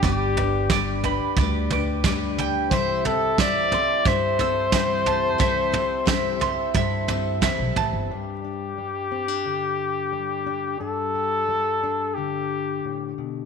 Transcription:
<<
  \new Staff \with { instrumentName = "Mandolin" } { \time 4/4 \key g \mixolydian \tempo 4 = 89 <d'' g'' d'''>4 d''8 b''8 d''8 d'''8 d''8 g''8 | e''4 e''8 c'''8 e''8 e'''8 e''8 a''8 | e''4 e''8 c'''8 e''8 e'''8 e''8 a''8 | r1 |
r1 | }
  \new Staff \with { instrumentName = "Trumpet" } { \time 4/4 \key g \mixolydian g'4. r2 r8 | c''8 a'8 d''4 c''2~ | c''2. r4 | g'1 |
a'2 g'4. r8 | }
  \new Staff \with { instrumentName = "Twelve-string acoustic guitar" } { \time 4/4 \key g \mixolydian <g d' g' b'>8 <d' g' b'>8 <g d' g' b'>8 <d' g' b'>8 <g d' g' b'>8 <d' g' b'>8 <g d' g' b'>4 | <c e g c' e' a'>8 <g c' e' a'>8 <c e g c' e' a'>8 <g c' e' a'>8 <g c' e' a'>8 <g c' e' a'>8 <c e g c' e' a'>4 | <c e g c' e' a'>8 <g c' e' a'>8 <c e g c' e' a'>8 <g c' e' a'>8 <g c' e' a'>8 <g c' e' a'>8 <c e g c' e' a'>4 | r1 |
r1 | }
  \new Staff \with { instrumentName = "Steel-string acoustic guitar" } { \clef bass \time 4/4 \key g \mixolydian << { r1 | r1 | r1 | <g d'>8 d'4 c'16 d'4.~ d'16 d'8 |
d'8 g'4 d'2~ d'8 | } \\ { r1 | r1 | r1 | g,4 g4 d4 g4 |
g,4 g4 d4 a,8 b,8 | } >> }
  \new Staff \with { instrumentName = "Upright bass" } { \clef bass \time 4/4 \key g \mixolydian g,,2 d,2 | c,2 g,2 | c,2 g,4~ g,16 b,,16 a,,16 g,,16 | r1 |
r1 | }
  \new DrumStaff \with { instrumentName = "Drums" } \drummode { \time 4/4 <bd tomfh>8 tomfh8 <bd sn tomfh>8 tomfh8 <bd tomfh>8 tomfh8 <bd sn tomfh>8 tomfh8 | <bd tomfh>8 tomfh8 <bd sn tomfh>8 tomfh8 <bd tomfh>8 tomfh8 <bd sn tomfh>8 tomfh8 | <bd tomfh>8 tomfh8 <bd sn tomfh>8 tomfh8 <bd tomfh>8 tomfh8 <bd sn tomfh>8 tomfh8 | r4 r4 r4 r4 |
r4 r4 r4 r4 | }
>>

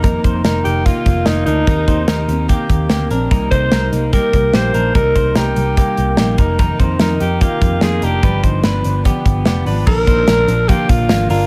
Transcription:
<<
  \new Staff \with { instrumentName = "Alto saxophone" } { \time 4/4 \key ees \major \tempo 4 = 146 r4. g'8 f'4 ees'8 ees'8~ | ees'4. r2 r8 | r8 c''4 r8 bes'4 c''4 | bes'4 g'2~ g'8 r8 |
r4. g'8 f'4 aes'8 g'8~ | g'8 r2. r8 | bes'2 g'8 f'4 f'8 | }
  \new Staff \with { instrumentName = "Clean electric guitar" } { \time 4/4 \key ees \major <ees' bes'>8 <ees' c''>8 <ees' bes'>4 <bes f'>4 <bes f'>8 <d' bes'>8 | <ees' bes'>8 <ees' c''>8 <ees' bes'>4 <bes g'>4 <bes g'>8 <d' bes'>8 | <ees' bes'>8 <ees' c''>8 <ees' bes'>4 <bes g'>4 <bes g'>8 <d' bes'>8 | <ees' bes'>8 <ees' c''>8 <ees' bes'>4 <bes g'>4 <bes g'>8 <ees' bes'>8 |
<ees' bes'>8 <ees' c''>8 <ees' bes'>4 <bes g'>4 <bes f'>8 <d' bes'>8 | <d' b'>8 <ees' c''>8 <d' b'>4 <b g'>4 <b g'>8 <d' b'>8 | <d' bes'>8 <ees' c''>8 <d' bes'>4 <bes f'>4 <bes f'>8 <d' bes'>8 | }
  \new Staff \with { instrumentName = "Steel-string acoustic guitar" } { \time 4/4 \key ees \major <f, c ees bes ees'>4 <c ees bes ees'>8 <ees bes ees'>8 <c ees bes ees'>4 <c ees bes ees'>8 <ees bes ees'>8 | <ees bes c' g'>4 <ees bes c' g'>8 <bes c' g'>8 <ees bes c' g'>4 <ees bes c' g'>8 <bes c' g'>8 | <c g bes ees'>4 <c g bes ees'>8 <g bes ees'>8 <c g bes ees'>4 <c g bes ees'>8 <g bes ees'>8 | <c g bes ees'>4 <c g bes ees'>8 <g bes ees'>8 <c g bes ees'>4 <c g bes ees'>8 <ees bes ees'>8 |
<f, c ees bes ees'>4 <c ees bes ees'>8 <ees bes ees'>8 <c ees bes ees'>4 <c ees bes ees'>8 <ees bes ees'>8 | <g, d f b d'>4 <d f b d'>8 <f b d'>8 <d f b d'>4 <d f b d'>8 <f b d'>8 | <bes, d f bes d'>4 <d f bes d'>8 <f bes d'>8 <bes, d f bes d'>4 <d f bes d'>8 <f bes d'>8 | }
  \new Staff \with { instrumentName = "Picked electric bass" } { \clef bass \time 4/4 \key ees \major f,,8 f,,8 f,,8 f,,8. r16 f,,8 f,,8 d,8 | ees,8 ees,8 ees,8 ees,8. r16 ees,8 d,8 bes,,8 | c,8 c,8 c,8 c,8. r16 c,8 bes,,8 bes,,8 | c,8 c,8 c,8 c,8. r16 c,8 bes,,8 f,,8~ |
f,,8 f,8 f,8 f,8. r16 f,8 f,8 f,,8 | g,,8 g,,8 g,,8 g,,8. r16 g,,8 f,,8 aes,,8 | bes,,8 bes,,8 bes,,8 bes,,8. r16 bes,,8 aes,,8 g,,8 | }
  \new DrumStaff \with { instrumentName = "Drums" } \drummode { \time 4/4 <hh bd>8 <hh bd>8 <hh sn>8 hh8 <hh bd>8 <hh bd>8 <hh sn>8 hh8 | <hh bd>8 <hh bd>8 <hh sn>8 hh8 <hh bd>8 <hh bd>8 <hh sn>8 hh8 | <hh bd>8 <hh bd>8 <hh sn>8 hh8 <hh bd>8 <hh bd>8 <hh sn>8 hh8 | <hh bd>8 <hh bd>8 <hh sn>8 hh8 <hh bd>8 hh8 <hh sn>8 <hh bd>8 |
<hh bd>8 <hh bd>8 <hh sn>8 hh8 <hh bd>8 <hh bd>8 <hh sn>8 hh8 | <hh bd>8 <hh bd>8 <hh sn>8 hh8 <hh bd>8 <hh bd>8 <hh sn>8 hho8 | <cymc bd>8 <hh bd>8 <hh sn>8 hh8 <hh bd>8 <hh bd>8 <hh sn>8 hho8 | }
>>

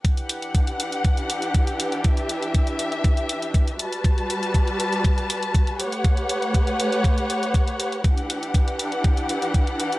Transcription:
<<
  \new Staff \with { instrumentName = "String section" } { \time 4/4 \key e \dorian \tempo 4 = 120 << { fis''1 | e''2.~ e''8 a''8~ | a''2.~ a''8 <a fis''>8~ | <a fis''>1 |
fis''1 | } \\ { <e d' g'>1~ | <e d' g'>2.~ <e d' g'>8 <g fis' b'>8~ | <g fis' b'>2.~ <g fis' b'>8 <g' b' cis''>8~ | <g' b' cis''>1 |
<e d' g'>1 | } >> }
  \new DrumStaff \with { instrumentName = "Drums" } \drummode { \time 4/4 <hh bd>16 hh16 hh16 hh16 <hh bd>16 hh16 hh16 hh16 <hh bd>16 hh16 hh16 hh16 <hh bd>16 hh16 hh16 hh16 | <hh bd>16 hh16 hh16 hh16 <hh bd>16 hh16 hh16 hh16 <hh bd>16 hh16 hh16 hh16 <hh bd>16 hh16 hh16 hh16 | <hh bd>16 hh16 hh16 hh16 <hh bd>16 hh16 hh16 hh16 <hh bd>16 hh16 hh16 hh16 <hh bd>16 hh16 hh16 hh16 | <hh bd>16 hh16 hh16 hh16 <hh bd>16 hh16 hh16 hh16 <hh bd>16 hh16 hh16 hh16 <hh bd>16 hh16 hh16 hh16 |
<hh bd>16 hh16 hh16 hh16 <hh bd>16 hh16 hh16 hh16 <hh bd>16 hh16 hh16 hh16 <hh bd>16 hh16 hh16 hh16 | }
>>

